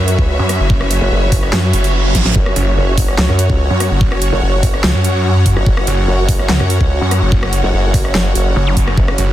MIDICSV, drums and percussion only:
0, 0, Header, 1, 2, 480
1, 0, Start_track
1, 0, Tempo, 413793
1, 812, Time_signature, 4, 2, 24, 8
1, 10822, End_track
2, 0, Start_track
2, 0, Title_t, "Drums"
2, 91, Note_on_c, 9, 42, 86
2, 207, Note_off_c, 9, 42, 0
2, 216, Note_on_c, 9, 36, 62
2, 332, Note_off_c, 9, 36, 0
2, 572, Note_on_c, 9, 37, 78
2, 572, Note_on_c, 9, 42, 80
2, 688, Note_off_c, 9, 37, 0
2, 688, Note_off_c, 9, 42, 0
2, 811, Note_on_c, 9, 36, 123
2, 927, Note_off_c, 9, 36, 0
2, 936, Note_on_c, 9, 37, 75
2, 1051, Note_on_c, 9, 42, 88
2, 1052, Note_off_c, 9, 37, 0
2, 1167, Note_off_c, 9, 42, 0
2, 1531, Note_on_c, 9, 36, 104
2, 1531, Note_on_c, 9, 46, 99
2, 1647, Note_off_c, 9, 36, 0
2, 1647, Note_off_c, 9, 46, 0
2, 1656, Note_on_c, 9, 37, 52
2, 1772, Note_off_c, 9, 37, 0
2, 1772, Note_on_c, 9, 38, 113
2, 1772, Note_on_c, 9, 39, 87
2, 1888, Note_off_c, 9, 38, 0
2, 1888, Note_off_c, 9, 39, 0
2, 2012, Note_on_c, 9, 42, 84
2, 2128, Note_off_c, 9, 42, 0
2, 2136, Note_on_c, 9, 42, 39
2, 2252, Note_off_c, 9, 42, 0
2, 2492, Note_on_c, 9, 36, 58
2, 2492, Note_on_c, 9, 38, 60
2, 2492, Note_on_c, 9, 42, 80
2, 2608, Note_off_c, 9, 36, 0
2, 2608, Note_off_c, 9, 38, 0
2, 2608, Note_off_c, 9, 42, 0
2, 2616, Note_on_c, 9, 38, 72
2, 2732, Note_off_c, 9, 38, 0
2, 2732, Note_on_c, 9, 36, 127
2, 2848, Note_off_c, 9, 36, 0
2, 2856, Note_on_c, 9, 37, 80
2, 2972, Note_off_c, 9, 37, 0
2, 2972, Note_on_c, 9, 42, 84
2, 3088, Note_off_c, 9, 42, 0
2, 3451, Note_on_c, 9, 36, 108
2, 3452, Note_on_c, 9, 46, 93
2, 3567, Note_off_c, 9, 36, 0
2, 3568, Note_off_c, 9, 46, 0
2, 3577, Note_on_c, 9, 37, 55
2, 3692, Note_on_c, 9, 38, 117
2, 3692, Note_on_c, 9, 39, 93
2, 3693, Note_off_c, 9, 37, 0
2, 3808, Note_off_c, 9, 38, 0
2, 3808, Note_off_c, 9, 39, 0
2, 3816, Note_on_c, 9, 37, 61
2, 3931, Note_on_c, 9, 42, 88
2, 3932, Note_off_c, 9, 37, 0
2, 4047, Note_off_c, 9, 42, 0
2, 4056, Note_on_c, 9, 36, 64
2, 4172, Note_off_c, 9, 36, 0
2, 4412, Note_on_c, 9, 37, 78
2, 4412, Note_on_c, 9, 42, 85
2, 4528, Note_off_c, 9, 37, 0
2, 4528, Note_off_c, 9, 42, 0
2, 4651, Note_on_c, 9, 36, 127
2, 4767, Note_off_c, 9, 36, 0
2, 4776, Note_on_c, 9, 37, 78
2, 4891, Note_on_c, 9, 42, 80
2, 4892, Note_off_c, 9, 37, 0
2, 5007, Note_off_c, 9, 42, 0
2, 5371, Note_on_c, 9, 36, 116
2, 5372, Note_on_c, 9, 46, 96
2, 5487, Note_off_c, 9, 36, 0
2, 5488, Note_off_c, 9, 46, 0
2, 5496, Note_on_c, 9, 37, 55
2, 5612, Note_off_c, 9, 37, 0
2, 5612, Note_on_c, 9, 38, 127
2, 5612, Note_on_c, 9, 39, 93
2, 5728, Note_off_c, 9, 38, 0
2, 5728, Note_off_c, 9, 39, 0
2, 5852, Note_on_c, 9, 42, 83
2, 5968, Note_off_c, 9, 42, 0
2, 6331, Note_on_c, 9, 36, 65
2, 6332, Note_on_c, 9, 42, 81
2, 6447, Note_off_c, 9, 36, 0
2, 6448, Note_off_c, 9, 42, 0
2, 6456, Note_on_c, 9, 37, 59
2, 6571, Note_on_c, 9, 36, 127
2, 6572, Note_off_c, 9, 37, 0
2, 6687, Note_off_c, 9, 36, 0
2, 6696, Note_on_c, 9, 37, 86
2, 6811, Note_on_c, 9, 42, 76
2, 6812, Note_off_c, 9, 37, 0
2, 6927, Note_off_c, 9, 42, 0
2, 7291, Note_on_c, 9, 36, 116
2, 7292, Note_on_c, 9, 46, 94
2, 7407, Note_off_c, 9, 36, 0
2, 7408, Note_off_c, 9, 46, 0
2, 7416, Note_on_c, 9, 37, 59
2, 7532, Note_off_c, 9, 37, 0
2, 7532, Note_on_c, 9, 38, 123
2, 7532, Note_on_c, 9, 39, 94
2, 7648, Note_off_c, 9, 38, 0
2, 7648, Note_off_c, 9, 39, 0
2, 7656, Note_on_c, 9, 37, 68
2, 7772, Note_off_c, 9, 37, 0
2, 7772, Note_on_c, 9, 42, 83
2, 7888, Note_off_c, 9, 42, 0
2, 7896, Note_on_c, 9, 36, 63
2, 8012, Note_off_c, 9, 36, 0
2, 8252, Note_on_c, 9, 37, 78
2, 8252, Note_on_c, 9, 42, 78
2, 8368, Note_off_c, 9, 37, 0
2, 8368, Note_off_c, 9, 42, 0
2, 8491, Note_on_c, 9, 36, 127
2, 8607, Note_off_c, 9, 36, 0
2, 8616, Note_on_c, 9, 37, 88
2, 8731, Note_on_c, 9, 42, 80
2, 8732, Note_off_c, 9, 37, 0
2, 8847, Note_off_c, 9, 42, 0
2, 9211, Note_on_c, 9, 36, 112
2, 9211, Note_on_c, 9, 46, 89
2, 9327, Note_off_c, 9, 36, 0
2, 9327, Note_off_c, 9, 46, 0
2, 9336, Note_on_c, 9, 37, 58
2, 9451, Note_on_c, 9, 38, 121
2, 9451, Note_on_c, 9, 39, 82
2, 9452, Note_off_c, 9, 37, 0
2, 9567, Note_off_c, 9, 38, 0
2, 9567, Note_off_c, 9, 39, 0
2, 9691, Note_on_c, 9, 42, 79
2, 9807, Note_off_c, 9, 42, 0
2, 10171, Note_on_c, 9, 36, 63
2, 10171, Note_on_c, 9, 42, 77
2, 10287, Note_off_c, 9, 36, 0
2, 10287, Note_off_c, 9, 42, 0
2, 10296, Note_on_c, 9, 37, 64
2, 10411, Note_on_c, 9, 36, 124
2, 10412, Note_off_c, 9, 37, 0
2, 10527, Note_off_c, 9, 36, 0
2, 10535, Note_on_c, 9, 37, 89
2, 10651, Note_off_c, 9, 37, 0
2, 10651, Note_on_c, 9, 42, 74
2, 10767, Note_off_c, 9, 42, 0
2, 10822, End_track
0, 0, End_of_file